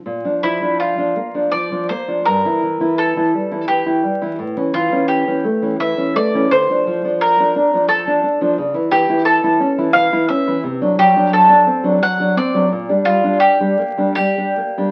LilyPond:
<<
  \new Staff \with { instrumentName = "Mandolin" } { \time 3/4 \key d \minor \tempo 4 = 85 r8 e'8 f'4 d''8 c''8 | bes'4 a'4 g'4 | r8 f'8 g'4 e''8 d''8 | c''4 bes'4 a'4 |
r8 g'8 a'4 f''8 e''8 | r8 g'8 a'4 fis''8 d''8 | r8 f'8 g'4 g'4 | }
  \new Staff \with { instrumentName = "Nylon-string guitar" } { \clef bass \time 3/4 \key d \minor bes,16 <f d'>16 f16 <f d'>8 <f d'>16 bes16 <f d'>16 f16 <f d'>16 bes16 <f d'>16 | g,16 <e e'>16 e16 <e e'>8 <e e'>16 g16 <e e'>16 e16 <e e'>16 g16 <e e'>16 | a,16 <e cis'>16 e16 <e cis'>8 <e cis'>16 a16 <e cis'>16 e16 <e cis'>16 a16 <e cis'>16 | d16 <f d'>16 f16 <f d'>8 <f d'>16 d'16 <f d'>16 f16 <f d'>16 d'16 <f d'>16 |
cis16 <e e'>16 e16 <e e'>8 <e e'>16 cis'16 <e e'>16 e16 <e e'>16 cis'16 <e e'>16 | c16 <fis d'>16 fis16 <fis d'>8 <fis d'>16 c'16 <fis d'>16 fis16 <fis d'>16 c'16 <fis d'>16 | bes,16 <g d'>16 g16 <g d'>8 <g d'>16 bes16 <g d'>16 g16 <g d'>16 bes16 <g d'>16 | }
>>